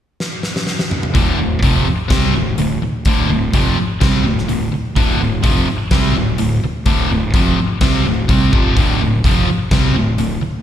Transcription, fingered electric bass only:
1.15 1.37 D1 medium
1.39 1.61 D1 medium
1.62 1.84 F1 medium
1.88 muted fingered electric bass stroke soft
2.10 2.32 C2 medium
2.35 2.57 D1 medium
2.58 2.80 D1 medium
2.82 muted fingered electric bass stroke soft
3.06 3.28 D1 medium
3.29 3.51 D1 medium
3.54 3.76 F1 medium
3.78 muted fingered electric bass stroke soft
4.01 4.23 C2 loud
4.26 4.48 D1 medium
4.49 4.71 D1 medium
4.72 muted fingered electric bass stroke soft
4.96 5.18 D1 medium
5.20 5.42 D1 medium
5.44 5.66 F1 medium
5.68 muted fingered electric bass stroke soft
5.91 6.13 C2 medium
6.15 6.37 D1 medium
6.40 6.61 D1 medium
6.63 muted fingered electric bass stroke soft
6.86 7.08 D1 medium
7.11 7.33 D1 medium
7.33 7.56 F1 medium
7.59 muted fingered electric bass stroke soft
7.81 8.03 C2 medium
8.06 8.28 D1 medium
8.29 8.51 C2 medium
8.53 8.75 F1 medium
8.77 8.99 D1 medium
9.00 9.22 D1 medium
9.24 9.46 F1 medium
9.47 muted fingered electric bass stroke soft
9.71 9.93 C2 medium
9.94 10.17 D1 medium
10.17 10.40 D1 medium
10.42 muted fingered electric bass stroke soft

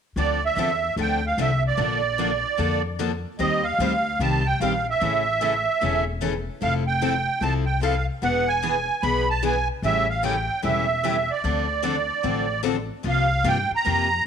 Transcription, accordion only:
0.18 0.44 D5 medium
0.45 0.95 E5 medium
1.01 1.26 G5 medium
1.26 1.40 F5 medium
1.41 1.63 E5 medium
1.67 2.82 D5 medium
3.39 3.66 D#5 medium
3.63 4.21 F5 medium
4.22 4.47 A5 medium
4.46 4.60 G5 medium
4.61 4.87 F5 medium
4.90 6.05 E5 medium
6.63 6.74 F5 medium
6.87 7.44 G5 medium
7.42 7.54 A5 medium
7.66 7.80 G5 medium
7.83 8.06 F5 medium
8.23 8.49 F#5 medium
8.48 9.04 G#5 medium
9.03 9.29 B5 medium
9.30 9.44 A5 medium
9.46 9.68 G#5 medium
9.85 10.08 E5 loud
10.10 10.23 F5 medium
10.24 10.61 G5 medium
10.64 11.32 E5 medium
11.31 12.61 D5 medium
13.09 13.48 F5 medium
13.48 13.71 G5 medium
13.75 14.24 A#5 loud

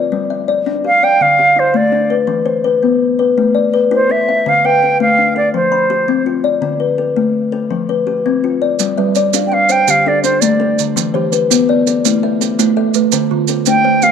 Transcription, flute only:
0.87 1.05 F5 medium
1.04 1.23 G5 medium
1.22 1.61 F5 medium
1.59 1.78 C5 medium
1.76 2.16 D5 medium
3.94 4.13 C5 medium
4.11 4.50 E5 medium
4.49 4.67 F5 medium
4.66 5.01 G5 medium
5.02 5.34 F5 medium
5.37 5.53 D5 medium
5.55 6.23 C5 medium
9.47 9.55 G5 medium
9.53 9.73 F5 medium
9.72 9.92 G5 medium
9.90 10.10 F5 medium
10.08 10.23 D5 medium
10.24 10.42 C5 medium
10.41 10.82 D5 medium
13.68 14.05 G5 loud
14.03 14.12 F5 medium

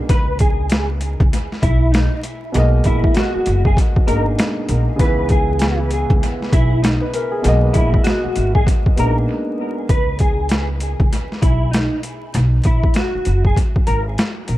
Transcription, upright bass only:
0.10 1.17 C#2 loud
1.20 1.31 C#2 loud
1.63 2.06 B1 medium
2.55 2.81 B1 loud
2.86 3.02 A#1 medium
3.35 muted upright bass stroke soft
3.47 3.73 F#1 medium
3.97 muted upright bass stroke medium
4.08 4.35 G#1 medium
4.69 4.86 A#1 medium
5.00 6.06 C#2 loud
6.10 6.20 C#2 loud
6.53 6.96 B1 medium
7.45 7.71 B1 loud
7.75 7.92 A#1 loud
8.25 muted upright bass stroke medium
8.37 8.63 G#1 medium
8.86 muted upright bass stroke soft
8.98 9.24 A#1 medium
9.90 10.96 C#2 loud
11.00 11.10 C#2 medium
11.43 11.86 B1 medium
12.35 12.61 B1 loud
12.65 12.82 A#1 medium
13.15 muted upright bass stroke soft
13.27 13.53 F#1 medium
13.76 muted upright bass stroke soft
13.88 14.14 G#1 medium
14.49 14.58 A#1 medium

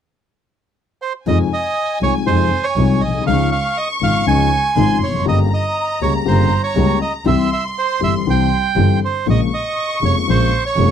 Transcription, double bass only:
1.27 1.47 F2 medium
2.01 2.22 C2 soft
2.26 2.47 F2 medium
2.76 2.97 C2 medium
3.01 3.26 B1 soft
3.27 3.47 C#2 medium
4.01 4.22 G#1 soft
4.26 4.47 C#2 medium
4.76 4.97 G#1 medium
5.02 5.25 F1 soft
5.26 5.47 G1 medium
6.01 6.22 C#2 soft
6.26 6.47 G1 medium
6.75 6.97 C#2 medium
7.25 7.47 C2 medium
8.01 8.22 G1 soft
8.26 8.47 C2 medium
8.76 8.98 G1 medium
9.27 9.48 A#1 medium
10.02 10.23 F1 soft
10.27 10.48 A#1 medium
10.77 10.91 F1 medium

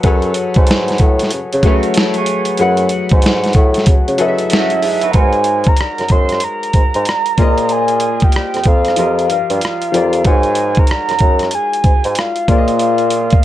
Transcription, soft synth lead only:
4.20 5.13 E5 loud
5.11 5.18 A#5 medium
5.16 5.70 G#5 loud
5.68 6.13 A#5 loud
6.12 6.45 C6 loud
6.44 7.74 A#5 medium
7.72 8.25 G#5 loud
8.24 8.69 G5 loud
8.68 9.30 F5 loud
9.32 10.29 F5 medium
10.28 10.81 G#5 medium
10.79 11.54 A#5 loud
11.55 12.21 G#5 medium
12.19 12.82 F5 medium
12.82 13.45 F5 medium

